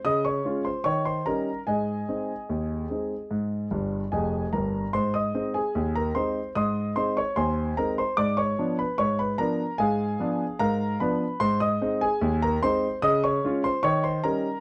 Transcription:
<<
  \new Staff \with { instrumentName = "Grand piano" } { \time 2/4 \key aes \major \tempo 4 = 74 <ees'' ees'''>16 <des'' des'''>8 <c'' c'''>16 <des'' des'''>16 <c'' c'''>16 <bes' bes''>8 | <aes' ees'' aes''>2~ | <aes' ees'' aes''>4 <aes' ees'' aes''>8 <bes' bes''>8 | <c'' c'''>16 <ees'' ees'''>8 <aes' aes''>8 <bes' bes''>16 <c'' c'''>8 |
<ees'' c''' ees'''>8 <c'' c'''>16 <des'' des'''>16 <c'' aes'' c'''>8 <bes' bes''>16 <c'' c'''>16 | <d'' d'''>16 <des'' des'''>8 <ces'' ces'''>16 <des'' des'''>16 <ces'' ces'''>16 <bes' bes''>8 | <aes' f'' aes''>4 <bes' f'' bes''>8 <ces'' ces'''>8 | <c'' c'''>16 <ees'' ees'''>8 <aes' aes''>8 <bes' bes''>16 <c'' c'''>8 |
<ees'' ees'''>16 <des'' des'''>8 <c'' c'''>16 <des'' des'''>16 <c'' c'''>16 <bes' bes''>8 | }
  \new Staff \with { instrumentName = "Grand piano" } { \clef bass \time 2/4 \key aes \major des8 <aes des' f'>8 ees8 <g des' ees'>8 | aes,8 <aes c' ees'>8 ees,8 <aes c' ees'>8 | aes,8 <g,, g,>8 <f,, f,>8 <g,, g,>8 | aes,8 <aes c' ees'>8 ees,8 <aes c' ees'>8 |
aes,8 <aes c' ees'>8 ees,8 <aes c' ees'>8 | aes,8 <f ces' d'>8 aes,8 <f ces' d'>8 | aes,8 <f ces' d'>8 aes,8 <f ces' d'>8 | aes,8 <aes c' ees'>8 ees,8 <aes c' ees'>8 |
des8 <aes des' f'>8 ees8 <g des' ees'>8 | }
>>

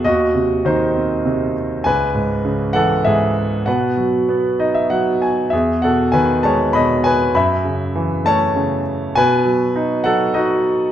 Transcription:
<<
  \new Staff \with { instrumentName = "Grand piano" } { \time 3/4 \key b \mixolydian \tempo 4 = 99 << { <fis' dis''>4 <dis' bis'>4. r8 | <b' gis''>4. <a' fis''>8 <gis' e''>4 | <b' fis''>2~ <b' fis''>8 r8 | <gis' e''>8 <a' fis''>8 <b' gis''>8 <cis'' a''>8 <dis'' b''>8 <b' gis''>8 |
<e'' b''>4. <cis'' a''>4 r8 | <b' gis''>4. <a' fis''>8 <fis' dis''>4 | } \\ { r2. | r2. | r4. dis''16 e''16 fis''8 gis''8 | r2. |
r2. | r2. | } >> }
  \new Staff \with { instrumentName = "Grand piano" } { \clef bass \time 3/4 \key b \mixolydian dis,8 bis,8 dis8 bis8 bis,4 | cis,8 gis,8 cis8 e8 gis,4 | b,8 fis8 b8 dis'8 fis4 | e,8 b,8 dis8 gis8 b,4 |
fis,8 cis8 e8 a8 cis4 | b,8 fis8 dis'8 fis8 dis'4 | }
>>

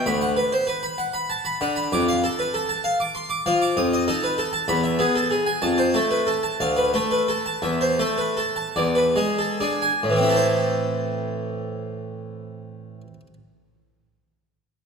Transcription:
<<
  \new Staff \with { instrumentName = "Harpsichord" } { \time 6/8 \key b \phrygian \tempo 4. = 61 b''16 fis''16 b'16 c''16 b'16 b''16 fis''16 b''16 a''16 b''16 fis''16 b''16 | \key a \minor d'''16 f''16 a'16 b'16 a'16 a''16 f''16 d'''16 c'''16 d'''16 f''16 d'''16 | ees'''16 ees''16 a'16 b'16 a'16 a''16 b''16 e''16 gis'16 a'16 gis'16 gis''16 | a''16 c''16 a'16 b'16 a'16 a''16 f''16 b'16 a'16 b'16 a'16 a''16 |
e''16 c''16 a'16 b'16 a'16 a''16 d''16 b'16 gis'16 a'16 gis'16 gis''16 | <a, e c' e' a' c''>2.~ | <a, e c' e' a' c''>2. | }
  \new Staff \with { instrumentName = "Harpsichord" } { \clef bass \time 6/8 \key b \phrygian d,8 r2 d8 | \key a \minor f,8 r2 f8 | f,8 ees'8 r8 e,8 b8 r8 | f,8 a8 r8 d,8 a8 r8 |
e,8 a8 r8 e,8 gis8 d'8 | r2. | r2. | }
>>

